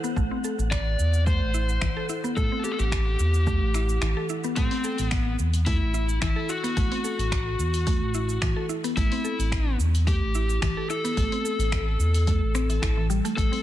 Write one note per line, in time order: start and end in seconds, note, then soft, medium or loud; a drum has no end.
0.00 0.15 B3 medium
0.00 4.57 F#5 medium
0.04 cabasa soft
0.16 0.29 A1 loud
0.16 0.30 A3 loud
0.16 kick loud
0.16 cabasa soft
0.31 0.43 C4 medium
0.44 0.58 A4 medium
0.44 cabasa medium
0.59 0.96 A1 loud
0.59 cabasa soft
0.71 1.26 D5 loud
0.71 finger snap loud
0.71 kick loud
0.71 cabasa soft
0.99 1.43 E2 medium
0.99 cabasa medium
1.14 cabasa soft
1.27 1.53 A3 medium
1.27 2.05 C5 medium
1.27 kick loud
1.27 cabasa soft
1.41 1.78 A1 medium
1.54 1.68 E4 medium
1.54 cabasa medium
1.69 cabasa soft
1.82 1.94 A1 medium
1.82 1.95 E3 loud
1.82 finger snap medium
1.82 kick medium
1.82 cabasa soft
1.97 2.08 A4 loud
2.09 2.23 E4 medium
2.09 cabasa medium
2.24 2.35 B3 medium
2.24 cabasa soft
2.37 2.49 A1 loud
2.37 2.50 A3 loud
2.37 2.62 A4 loud
2.37 kick loud
2.37 cabasa soft
2.52 2.64 C4 medium
2.64 2.71 G4 loud
2.64 2.78 A4 medium
2.64 cabasa medium
2.71 2.79 A4 medium
2.79 3.16 A1 loud
2.79 4.25 G4 loud
2.79 cabasa soft
2.92 finger snap loud
2.92 kick loud
2.92 cabasa soft
3.19 3.63 E2 medium
3.19 cabasa medium
3.34 cabasa soft
3.47 3.73 A3 medium
3.47 kick loud
3.47 cabasa soft
3.61 3.98 A1 medium
3.74 3.88 E4 medium
3.74 finger snap soft
3.74 cabasa medium
3.89 cabasa soft
4.02 4.14 A1 loud
4.02 4.15 E3 loud
4.02 finger snap loud
4.02 cabasa soft
4.17 4.28 A4 loud
4.29 4.43 E4 medium
4.29 cabasa medium
4.44 4.56 B3 medium
4.44 cabasa soft
4.56 4.69 A1 medium
4.56 4.70 A3 loud
4.56 5.11 C4 loud
4.56 kick loud
4.56 open hi-hat medium
4.56 cabasa soft
4.71 4.84 C4 medium
4.71 open hi-hat soft
4.84 4.98 A4 medium
4.84 cabasa medium
4.98 5.36 A1 medium
4.98 open hi-hat soft
4.98 cabasa soft
5.11 5.35 B3 loud
5.11 finger snap loud
5.11 kick loud
5.11 open hi-hat medium
5.11 cabasa soft
5.39 5.83 E2 medium
5.39 cabasa medium
5.54 open hi-hat soft
5.54 cabasa soft
5.66 5.93 A3 medium
5.66 6.21 E4 medium
5.66 kick loud
5.66 open hi-hat medium
5.66 cabasa soft
5.82 6.19 A1 medium
5.94 6.08 E4 medium
5.94 cabasa medium
6.09 cabasa soft
6.22 6.35 E3 loud
6.22 6.50 E4 medium
6.22 finger snap loud
6.22 kick loud
6.22 open hi-hat medium
6.22 cabasa soft
6.36 6.48 A4 loud
6.49 6.63 E4 medium
6.49 8.66 F#4 loud
6.49 cabasa medium
6.64 6.75 B3 medium
6.64 open hi-hat soft
6.64 cabasa soft
6.77 6.89 A1 loud
6.77 6.90 A3 loud
6.77 kick loud
6.77 open hi-hat medium
6.77 cabasa soft
6.92 7.04 C4 medium
6.92 open hi-hat soft
7.04 7.18 A4 medium
7.04 cabasa medium
7.19 7.56 A1 medium
7.19 open hi-hat soft
7.19 cabasa soft
7.32 finger snap loud
7.32 kick loud
7.32 open hi-hat medium
7.32 cabasa soft
7.59 8.03 E2 loud
7.59 cabasa medium
7.74 open hi-hat soft
7.74 cabasa soft
7.87 8.13 A3 medium
7.87 kick loud
7.87 open hi-hat medium
7.87 cabasa soft
8.02 8.39 A1 medium
8.14 8.28 E4 medium
8.14 cabasa medium
8.29 cabasa soft
8.41 8.54 A1 medium
8.41 8.55 E3 loud
8.41 finger snap loud
8.41 kick loud
8.41 open hi-hat medium
8.41 cabasa soft
8.56 8.68 A4 loud
8.69 8.83 E4 medium
8.69 cabasa medium
8.84 8.96 B3 medium
8.84 open hi-hat soft
8.84 cabasa soft
8.97 9.09 A1 loud
8.97 9.10 A3 loud
8.97 9.76 E4 loud
8.97 kick loud
8.97 open hi-hat medium
8.97 cabasa soft
9.12 9.24 C4 medium
9.12 open hi-hat soft
9.24 9.38 A4 medium
9.24 cabasa medium
9.39 9.76 A1 medium
9.39 open hi-hat soft
9.39 cabasa soft
9.52 finger snap loud
9.52 kick loud
9.52 open hi-hat medium
9.52 cabasa soft
9.79 10.23 E2 medium
9.79 cabasa medium
9.95 open hi-hat soft
9.95 cabasa soft
10.07 10.33 A3 medium
10.07 10.59 G4 medium
10.07 kick loud
10.07 open hi-hat medium
10.07 cabasa soft
10.21 10.58 A1 medium
10.35 10.49 E4 medium
10.35 cabasa medium
10.50 cabasa soft
10.62 10.74 A1 medium
10.62 10.75 E3 loud
10.62 10.90 G4 medium
10.62 finger snap medium
10.62 kick loud
10.62 open hi-hat medium
10.62 cabasa soft
10.77 10.89 A4 loud
10.90 11.04 E4 medium
10.90 13.06 A4 loud
10.90 cabasa medium
11.04 11.16 B3 medium
11.04 open hi-hat soft
11.04 cabasa soft
11.17 11.29 A1 loud
11.17 11.31 A3 loud
11.17 kick loud
11.17 open hi-hat medium
11.17 cabasa soft
11.32 11.44 C4 medium
11.32 open hi-hat soft
11.45 11.59 A4 medium
11.45 cabasa medium
11.59 11.96 A1 medium
11.59 open hi-hat soft
11.59 cabasa medium
11.72 finger snap loud
11.72 kick loud
11.72 open hi-hat medium
11.72 cabasa soft
11.99 12.43 E2 loud
11.99 cabasa medium
12.14 open hi-hat soft
12.14 cabasa soft
12.27 12.40 A3 medium
12.27 kick loud
12.27 open hi-hat medium
12.27 cabasa soft
12.42 12.79 A1 medium
12.55 12.68 C4 loud
12.55 finger snap soft
12.55 cabasa medium
12.69 12.77 E3 medium
12.69 open hi-hat soft
12.69 cabasa soft
12.82 13.21 A1 loud
12.82 12.96 E4 medium
12.82 finger snap medium
12.82 kick loud
12.82 open hi-hat medium
12.82 cabasa soft
12.97 13.09 E3 medium
13.10 13.23 G3 loud
13.10 cabasa medium
13.25 13.36 A3 loud
13.25 open hi-hat soft
13.25 cabasa soft
13.37 13.50 A1 loud
13.37 13.51 A3 loud
13.37 13.63 A4 medium
13.37 kick loud
13.37 open hi-hat medium
13.37 cabasa soft
13.52 13.63 C4 medium
13.52 open hi-hat soft